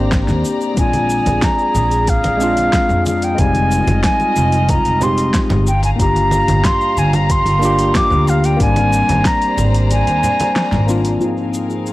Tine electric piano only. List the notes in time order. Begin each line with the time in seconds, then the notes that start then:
Already playing: A#3 C4 D4 G4
0.74 G#3 C4
0.79 D4 F4
2.37 G#3 C4
2.41 D4 F4
3.34 G#3 C4
3.39 G3 D#4
5.00 G#3 C4 D#4 G4
5.96 A#3 D4
6.00 F4 G4
7.59 A#3 D4 F4
7.65 G4
8.57 A#3 C4
8.61 G3 D4
10.87 A#3 C4 D4 F4
11.18 G#2 F3 A#3
11.23 C4 D#4